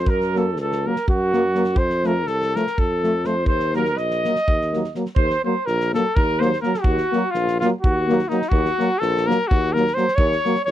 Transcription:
Already playing: cornet C5, trumpet C5
0.06 tuba F#2, cornet A#4, trumpet A#4, kick
0.21 snare
0.34 euphonium F#3, french horn A#3, cornet A4, trumpet A4, snare
0.57 tuba C#2, cornet A4, trumpet A4, snare
0.72 snare
0.86 euphonium F#3, french horn A#3, cornet A#4, trumpet A#4
0.96 snare
1.08 tuba F#2, cornet F#4, trumpet F#4, kick
1.33 euphonium F#3, french horn A#3, snare
1.55 euphonium F#3, french horn A#3, snare
1.64 snare
1.76 tuba F2, cornet C5, trumpet C5, kick
1.90 snare
2.04 euphonium F3, french horn A3, cornet A#4, trumpet A#4, snare
2.27 tuba C2, cornet A4, trumpet A4, snare
2.42 snare
2.55 euphonium F3, french horn A3, trumpet A#4, cornet A#4, snare
2.67 snare
2.77 tuba F2, trumpet A4, cornet A4, kick
3.03 euphonium F3, french horn A3, snare
3.25 euphonium F3, french horn A3, trumpet C5, cornet C5, snare
3.46 tuba D#2, trumpet C5, cornet C5, kick
3.60 snare
3.74 euphonium F#3, french horn A#3, trumpet A#4, cornet A#4, snare
3.85 snare
3.96 tuba A#1, trumpet D#5, cornet D#5, snare
4.11 snare
4.25 euphonium F#3, french horn A#3, snare
4.36 snare
4.48 tuba D#2, kick
4.61 snare
4.73 euphonium F#3, french horn A#3, snare
4.84 snare
4.95 euphonium F#3, french horn A#3, snare
5.06 snare
5.16 tuba D#2, trumpet C5, cornet C5, kick
5.30 snare
5.44 euphonium F#3, french horn A#3, trumpet C5, cornet C5
5.66 tuba A#1, cornet A#4, trumpet A#4, snare
5.81 snare
5.94 euphonium F#3, french horn A#3, trumpet A4, cornet A4, snare
6.16 tuba D#2, cornet A#4, trumpet A#4, kick
6.40 french horn A#3, cornet C5, trumpet C5, snare
6.44 euphonium F#3
6.53 snare
6.61 euphonium F#3, french horn A#3, cornet A#4, trumpet A#4, snare
6.74 snare
6.81 tuba D#2, cornet F#4, trumpet F#4, kick
6.98 snare
7.12 euphonium F#3, french horn A#3, snare
7.31 tuba A#1, cornet F4, trumpet F4, snare
7.48 snare
7.59 french horn A#3, trumpet F4, cornet F4, snare
7.64 euphonium F#3
7.81 trumpet F#4, cornet F#4, kick
7.85 tuba D#2
8.09 euphonium F#3, french horn A#3, snare
8.19 snare
8.28 french horn A#3, trumpet D#4, cornet D#4, snare
8.32 euphonium F#3
8.42 snare
8.49 tuba D#2, trumpet F#4, cornet F#4, kick
8.66 snare
8.79 euphonium F#3, french horn A#3, snare
8.98 tuba A#1, trumpet A4, cornet A4
9.02 snare
9.17 snare
9.26 euphonium F#3, french horn A#3, trumpet A#4, cornet A#4
9.31 snare
9.48 tuba D#2, cornet F#4, trumpet F#4, kick
9.73 euphonium F#3, french horn A#3, trumpet A#4, cornet A#4, snare
9.87 snare
9.94 euphonium F#3, french horn A#3, trumpet C5, cornet C5, snare
10.08 snare
10.15 tuba D#2, trumpet C#5, cornet C#5, kick
10.32 snare
10.45 euphonium F#3, french horn A#3, snare
10.55 snare
10.65 tuba A#1, cornet C#5, trumpet C#5, snare

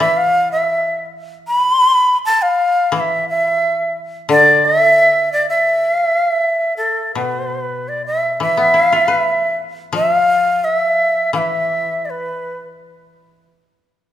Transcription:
0.00 koto E3, shakuhachi E5
0.17 shakuhachi F5
0.52 shakuhachi E5
1.48 shakuhachi B5
2.25 shakuhachi A5
2.42 shakuhachi F5
2.92 koto E3
2.96 shakuhachi E5 F5
3.30 shakuhachi E5
4.29 koto D3, shakuhachi D5
4.65 shakuhachi E5
5.33 shakuhachi D5
5.49 shakuhachi E5
6.77 shakuhachi A4
7.14 koto B2, shakuhachi B4
7.88 shakuhachi D5
8.06 shakuhachi E5
8.40 koto E3, shakuhachi E5
8.57 koto B3
8.74 koto E4
8.92 koto F4
9.08 koto B4
9.93 koto F3, shakuhachi E5
10.12 shakuhachi F5
10.64 shakuhachi E5
11.33 koto E3, shakuhachi F5
11.38 shakuhachi E5
12.05 shakuhachi D5
12.10 shakuhachi B4

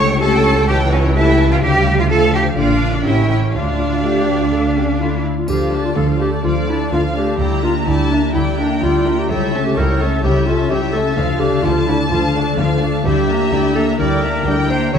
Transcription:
Already playing: double bass section C#2, harp C#3 C#4 E4 G4, viola section A3, cello section C#5, violin section C#6
0.09 violin section G5
0.20 french horn section A3 G4, viola section C#4, harp G4, cello section A4, violin section A5
0.32 violin section G5
0.44 harp E4, violin section A5
0.56 violin section G5
0.68 harp C#3, viola section E3, cello section G4, violin section G5 A5
0.81 violin section G5
0.92 harp C#4, cello section C#4, violin section C#5 A5
1.04 violin section G5
1.15 french horn section A3 G4, cello section E4, harp G4, violin section E5 A5
1.28 violin section G5
1.39 harp E4, violin section A5
1.51 cello section F4, violin section F5 G5
1.63 double bass section D2, harp D3, viola section G3, cello section G4, violin section F5 G5
1.87 harp A3
1.99 cello section F4, violin section F5
2.10 viola section F3, french horn section A3 F4, harp F4, cello section A4, violin section F5 A5
2.34 harp D4, cello section G4, violin section G5
2.57 double bass section A#1, harp A#2, french horn section A#3 D4, viola section D4, cello section F4, violin section D5 F5
2.81 harp F4 A#4
2.94 cello section D4, violin section D5
3.05 double bass section A1, harp A2, french horn section A#3 G4, viola section C#4, cello section E4, violin section E5 G5
3.30 cello section E4, harp G4 A#4, violin section E5
3.54 double bass section D2, harp D3, cello section D4, viola section F4, violin section D5 F5
3.79 harp A3
4.02 french horn section A3 F4, harp F4, viola section G4
4.40 viola section F4
4.51 harp D3, viola section A4
4.75 harp A3, clarinet C#4, viola section G4
4.99 french horn section A3 F4, clarinet E4, harp F4, viola section F4
5.24 harp D4, viola section E4
5.38 clarinet F4
5.48 double bass section D2, cello section D3, harp D3, viola section F3 F4, clarinet G4, violin section A4 F5, triangle
5.72 harp A3, viola section A3 D4, violin section D5 A5
5.85 clarinet F4
5.96 double bass section D2, cello section D3, viola section F3 F4, harp F4, violin section A4 F5, clarinet A4
6.19 viola section A3 D4, harp D4, clarinet G4, violin section D5 A5
6.43 double bass section D2, harp D3, cello section D3, viola section F3 F4, clarinet F4, violin section A4 D5 F5
6.67 harp A3, viola section A3 D4, clarinet E4, violin section D5 A5
6.91 double bass section D2, cello section D3, viola section F3 F4, harp F4, clarinet F4, violin section A4 F5
7.15 viola section A3 D4, harp D4, clarinet G4, violin section D5 A5
7.39 double bass section D2, harp D3, cello section D3, viola section G3 E4, violin section D5 G5 A#5
7.62 viola section A#3 D4, harp D4, clarinet F4, violin section E5 A#5
7.86 double bass section D2, cello section D3, viola section G3 E4, clarinet E4, harp G4, violin section D5 G5 A5
8.10 viola section A#3 D4, clarinet D4, harp E4, violin section E5 A#5
8.33 double bass section D2, harp D3, cello section D3, viola section G3 E4, clarinet E4, violin section D5 G5
8.57 viola section A#3 D4, harp D4, clarinet D4, violin section E5 A#5
8.81 double bass section D2, cello section D3, viola section G3 E4, clarinet F4, harp G4, violin section D5 G5
9.04 viola section A#3 D4, harp E4, violin section E5 A#5
9.19 clarinet G4
9.28 double bass section C#2, harp C#3, cello section C#3, viola section G3 E4, clarinet A4, violin section C#5 E5 G5
9.52 viola section A3 C#4, harp C#4, violin section E5 A5
9.66 clarinet G4
9.75 double bass section C#2, cello section C#3, viola section G3 E4, harp G4, clarinet A#4, violin section C#5 G5
9.99 viola section A3 C#4, harp E4, clarinet A4, violin section E5 A5
10.23 double bass section C#2, harp C#3, cello section C#3, viola section G3 E4, clarinet G4, violin section C#5 E5 G5
10.47 viola section A3 C#4, clarinet F4, violin section E5 A5
10.70 double bass section C#2, cello section C#3, viola section G3 E4, clarinet G4, violin section C#5 E5 G5
10.92 viola section A3 C#4, harp E4, clarinet A4, violin section E5 A5
11.17 double bass section D2, harp D3, cello section D3, viola section F3 F4, violin section A4 F5
11.40 harp A3, viola section A3 D4, clarinet G4, violin section D5 A5
11.63 double bass section D2, cello section D3, viola section F3 F4, clarinet F4, harp F4, violin section A4 F5 A5
11.87 viola section A3 D4, harp D4, clarinet E4, violin section D5 A5
12.11 double bass section D2, harp D3, cello section D3, viola section F3 F4, clarinet F4, violin section A4 F5
12.35 harp A3, viola section A3 D4, violin section D5 A5
12.58 double bass section D2, cello section D3, viola section F3 F4, harp F4, violin section A4 F5
12.82 viola section A3 D4, harp D4, violin section D5 A5
13.04 double bass section D2, harp D3, cello section D3, viola section G3 E4, clarinet G4, violin section D5 E5 G5
13.29 viola section A#3 D4, violin section E5 A#5
13.52 double bass section D2, cello section D3, viola section G3 E4, harp G4, violin section D5 G5
13.75 viola section A#3 D4, harp E4, clarinet A4, violin section E5 A#5
13.99 double bass section D2, harp D3, cello section D3, viola section G3 E4, clarinet A#4, violin section D5 G5
14.22 viola section A#3 D4, harp D4, violin section E5 A#5
14.46 double bass section D2, cello section D3, viola section G3 E4, harp G4, violin section D5 G5
14.69 viola section A#3 D4, harp E4, clarinet C5, violin section E5 A#5
14.93 double bass section C#2, harp C#3, cello section C#3, viola section G3 E4, clarinet C#5, violin section C#5 E5 G5

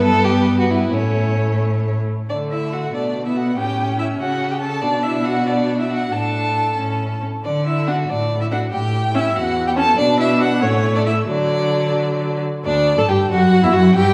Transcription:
Already playing: cello G2, viola B3, violin B4
0.03 violin A4
0.24 viola B3, violin G4
0.60 violin F#4
0.70 violin E4
0.93 cello A2, viola A3, violin C#4 C#5
2.29 cello D3, viola A3, violin D4 D5
2.51 violin E4 E5
2.73 violin F#4 F#5
2.94 cello B2, viola A3, violin D4 D5
3.26 viola B3, violin E4 E5
3.36 violin F#4 F#5
3.57 cello A2, viola C#4, violin G4 G5
3.99 violin E4 E5
4.19 cello C#3, violin F#4 F#5
4.51 violin G4 G5
4.61 violin A4 A5
4.82 cello B2, viola D4, violin D4 D5
5.03 violin E4 E5
5.25 violin F#4 F#5
5.46 viola D4, violin D4 D5
5.79 violin E4 E5
5.90 violin F#4 F#5
6.11 cello A2, viola D4, violin A4 A5
6.78 cello A2, viola C#4
7.44 cello D3, violin D4 D5
7.66 violin E4 E5
7.87 viola D4, violin F#4 F#5
8.09 cello A2, violin D4 D5
8.41 violin E4 E5
8.51 viola D4, violin F#4 F#5
8.72 cello A2, violin G4 G5
9.14 viola C#4, violin E4 E5
9.35 cello E2, violin F#4 F#5
9.67 violin G4 G5
9.77 viola C#4, violin A4 A5
9.98 cello B2, viola D4, violin D4 D5
10.19 violin E4 E5
10.40 violin F#4 F#5
10.62 cello A2, viola A3, violin C#4 C#5
10.96 violin D4 D5
11.06 violin E4 E5
11.29 cello D3, viola F#3, violin D4 D5
12.65 cello D2, viola D4, violin D4 D5
12.98 cello A2, viola A4, violin A4 A5
13.08 cello G2, viola G4, violin G4 G5
13.30 cello F#2, viola F#4, violin F#4 F#5
13.63 cello E2, viola E4, violin E4 E5
13.74 cello F#2, viola F#4, violin F#4 F#5
13.95 cello G2, viola G4, violin G4 G5

